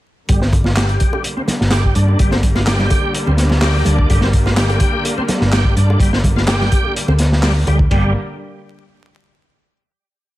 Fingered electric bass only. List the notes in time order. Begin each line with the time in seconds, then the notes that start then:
0.29 G1
1.60 G1
1.96 G2
2.19 G1
3.27 D2
3.86 D2
4.10 G1
5.41 G1
5.76 G2
6.00 G1
7.08 D2
7.67 D2
7.91 G1